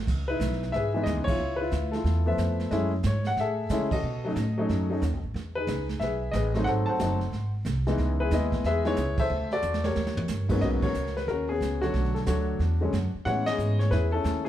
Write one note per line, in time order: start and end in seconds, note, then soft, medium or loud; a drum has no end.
0.07 0.39 C#2 medium
0.07 brush sweep soft
0.07 kick medium
0.07 snare soft
0.07 crash medium
0.28 0.92 D#4 medium
0.28 0.92 E4 medium
0.28 0.70 B4 medium
0.40 0.72 B1 medium
0.40 snare medium
0.40 hi-hat pedal medium
0.52 snare soft
0.63 snare soft
0.72 1.05 G#1 medium
0.72 1.37 G#4 medium
0.72 1.37 B4 medium
0.72 1.04 E5 medium
0.72 brush sweep soft
0.72 snare soft
0.94 1.37 E3 medium
0.94 1.38 G#3 medium
0.94 1.38 B3 medium
0.94 1.38 D#4 medium
1.03 1.17 D#2 medium
1.03 1.25 D#5 medium
1.03 snare medium
1.03 hi-hat pedal medium
1.17 1.27 C#2 medium
1.24 1.38 B1 medium
1.24 1.57 C#5 loud
1.24 kick medium
1.24 crash medium
1.29 1.60 E4 medium
1.29 1.59 F4 medium
1.39 1.71 C#2 medium
1.39 brush sweep soft
1.56 1.93 B4 medium
1.61 1.94 E4 medium
1.61 1.94 F4 medium
1.72 2.04 D2 medium
1.72 snare medium
1.72 hi-hat pedal soft
1.92 2.57 E4 medium
1.92 2.55 A4 medium
1.92 snare soft
1.96 2.57 F4 medium
2.04 2.37 E2 medium
2.04 brush sweep medium
2.04 snare soft
2.26 2.69 F3 medium
2.26 2.69 A3 medium
2.26 2.69 B3 medium
2.26 2.70 E5 medium
2.38 2.70 F2 medium
2.38 snare medium
2.38 hi-hat pedal medium
2.60 snare soft
2.71 3.03 F#2 medium
2.71 2.90 G#3 medium
2.71 2.90 A3 medium
2.71 2.91 C#4 medium
2.71 2.91 E4 medium
2.71 brush sweep soft
2.71 snare soft
3.03 3.36 G#2 loud
3.03 3.27 C#5 medium
3.03 snare medium
3.03 hi-hat pedal medium
3.24 3.39 F#5 medium
3.24 snare soft
3.36 3.69 A2 medium
3.36 4.01 G#4 medium
3.36 3.69 E5 medium
3.36 brush sweep soft
3.36 snare soft
3.41 3.92 A4 medium
3.69 4.02 C#3 medium
3.69 3.89 G#3 medium
3.69 3.90 A3 medium
3.69 3.90 C#4 medium
3.69 3.90 E4 medium
3.69 snare medium
3.69 hi-hat pedal medium
3.91 5.20 F#4 medium
3.91 5.20 A4 medium
3.91 5.20 D#5 medium
3.91 kick medium
3.91 crash medium
4.03 4.35 B2 medium
4.03 brush sweep soft
4.25 4.35 F#3 medium
4.25 4.36 A3 medium
4.25 4.36 C#4 medium
4.25 4.36 D#4 medium
4.36 4.68 A2 loud
4.36 snare medium
4.36 hi-hat pedal medium
4.58 4.88 F#3 medium
4.58 4.89 A3 medium
4.58 4.89 C#4 medium
4.58 4.89 D#4 medium
4.69 5.01 F#2 medium
4.69 brush sweep medium
4.69 snare soft
4.90 5.01 F#3 medium
4.90 5.01 A3 medium
4.90 5.01 C#4 medium
4.90 5.02 D#4 medium
5.02 5.13 D#2 medium
5.02 snare medium
5.02 hi-hat pedal medium
5.13 5.23 B1 medium
5.23 5.34 A1 medium
5.34 5.67 E2 medium
5.34 brush sweep soft
5.34 snare soft
5.55 6.19 D#4 medium
5.55 6.02 G#4 medium
5.55 5.86 B4 medium
5.67 6.00 C#2 loud
5.67 snare medium
5.67 hi-hat pedal medium
5.89 snare soft
6.00 6.33 B1 medium
6.00 6.34 B4 medium
6.00 6.34 E5 medium
6.00 brush sweep soft
6.00 snare soft
6.04 6.34 G#4 medium
6.31 6.65 A1 loud
6.31 6.65 G#4 medium
6.31 6.67 D#5 medium
6.31 snare medium
6.31 hi-hat pedal medium
6.35 6.65 B4 medium
6.54 6.97 F#3 medium
6.54 6.98 A3 medium
6.54 6.98 C4 medium
6.54 6.98 D#4 medium
6.54 snare soft
6.64 6.86 G#1 medium
6.64 7.29 A4 medium
6.64 6.87 C5 medium
6.64 6.69 F#5 loud
6.64 brush sweep soft
6.64 snare soft
6.86 7.50 C5 medium
6.86 7.50 F#5 medium
6.86 7.17 A5 loud
6.86 muted upright bass stroke soft
6.99 7.31 F#1 loud
6.99 7.18 F#3 medium
6.99 7.19 A3 medium
6.99 7.19 C4 medium
6.99 7.19 D#4 medium
6.99 snare medium
6.99 hi-hat pedal medium
7.21 snare soft
7.32 7.64 G#1 medium
7.32 brush sweep medium
7.32 snare soft
7.65 7.97 C2 medium
7.65 snare medium
7.65 hi-hat pedal medium
7.87 8.29 E3 medium
7.87 8.29 G#3 medium
7.87 8.30 B3 medium
7.87 8.30 D#4 medium
7.87 snare soft
7.98 8.30 C#2 loud
7.98 brush sweep soft
7.98 snare soft
8.20 8.31 E4 medium
8.20 8.65 G#4 medium
8.20 8.62 B4 medium
8.31 8.63 D#2 loud
8.31 8.82 G#3 medium
8.31 8.82 B3 medium
8.31 8.82 E4 medium
8.31 8.82 D#5 medium
8.31 snare medium
8.31 hi-hat pedal medium
8.52 kick medium
8.52 snare soft
8.64 8.96 E2 medium
8.64 8.85 G#4 medium
8.64 9.27 B4 medium
8.64 8.85 E5 loud
8.64 brush sweep medium
8.64 snare soft
8.85 8.96 E3 medium
8.85 8.96 G#3 medium
8.85 8.96 B3 medium
8.85 8.97 D#4 medium
8.85 9.28 E4 medium
8.85 9.28 G#4 medium
8.85 9.20 C#5 loud
8.85 snare soft
8.96 9.29 C#2 loud
8.96 snare medium
8.96 hi-hat pedal medium
9.18 9.51 A4 medium
9.18 9.81 C5 medium
9.18 9.53 E5 loud
9.18 kick medium
9.18 crash medium
9.30 9.62 D2 medium
9.30 brush sweep soft
9.51 9.94 F#4 medium
9.51 9.94 A4 medium
9.51 9.86 D5 loud
9.51 snare soft
9.62 9.95 E2 loud
9.62 hi-hat pedal medium
9.74 snare medium
9.84 10.46 G4 medium
9.84 10.47 A#4 medium
9.84 10.46 C#5 medium
9.84 snare medium
9.95 10.28 D#2 medium
9.95 snare medium
10.07 snare medium
10.17 floor tom medium
10.28 10.61 G2 medium
10.28 snare medium
10.28 hi-hat pedal medium
10.49 10.92 G#2 medium
10.49 10.92 F#3 medium
10.49 10.93 A#3 medium
10.49 10.93 B3 medium
10.49 10.93 C#4 medium
10.49 kick medium
10.49 crash medium
10.61 10.81 B1 medium
10.61 10.83 F#4 medium
10.61 11.15 B4 medium
10.61 10.66 D#5 medium
10.61 brush sweep soft
10.61 snare soft
10.82 11.29 F#4 medium
10.82 11.27 A#4 medium
10.82 11.14 C#5 medium
10.82 kick medium
10.82 crash medium
10.94 11.26 C#2 medium
10.94 hi-hat pedal medium
11.07 snare soft
11.17 11.28 B4 medium
11.17 snare soft
11.27 11.59 D#2 medium
11.27 11.50 C#4 medium
11.27 11.80 F#4 medium
11.27 11.48 A#4 medium
11.27 brush sweep soft
11.27 snare soft
11.49 11.92 B3 medium
11.49 11.92 C#4 medium
11.49 11.80 G#4 medium
11.61 11.93 C#2 medium
11.61 snare medium
11.61 hi-hat pedal medium
11.81 12.24 D3 medium
11.81 12.25 F#3 medium
11.81 12.25 A3 medium
11.81 12.27 D4 medium
11.81 12.12 F#4 medium
11.81 12.25 C#5 medium
11.81 snare soft
11.94 12.26 B1 medium
11.94 brush sweep soft
11.94 snare soft
12.05 snare soft
12.14 12.19 A4 medium
12.14 snare soft
12.26 12.59 D2 medium
12.26 12.60 D3 medium
12.26 12.60 F#3 medium
12.26 12.60 A3 medium
12.26 13.11 D4 medium
12.26 13.10 F#4 medium
12.26 12.60 C#5 medium
12.26 snare medium
12.26 hi-hat pedal medium
12.59 12.92 E2 medium
12.59 brush sweep soft
12.59 snare soft
12.81 12.92 D3 medium
12.81 12.92 F#3 medium
12.81 12.92 G#3 medium
12.81 12.93 C#4 medium
12.93 13.12 F#2 medium
12.93 snare medium
12.93 hi-hat pedal medium
13.15 muted upright bass stroke soft
13.25 13.58 A2 medium
13.25 14.18 E3 medium
13.25 14.18 G#3 soft
13.25 14.18 B3 medium
13.25 14.12 C#4 medium
13.25 13.78 C#5 medium
13.25 13.45 F#5 loud
13.25 brush sweep soft
13.25 snare soft
13.46 13.91 G#4 medium
13.46 13.77 D#5 loud
13.46 snare medium
13.46 ride medium
13.58 13.91 G#2 loud
13.58 hi-hat pedal soft
13.79 13.92 C#5 medium
13.79 snare soft
13.91 14.24 E2 medium
13.91 14.13 E4 medium
13.91 14.43 G#4 medium
13.91 14.11 B4 medium
13.91 brush sweep soft
13.91 snare soft
14.12 14.49 C#4 medium
14.12 14.45 E4 medium
14.12 14.47 A4 loud
14.24 14.49 D#2 loud
14.24 snare medium
14.24 hi-hat pedal medium
14.45 14.49 G#4 medium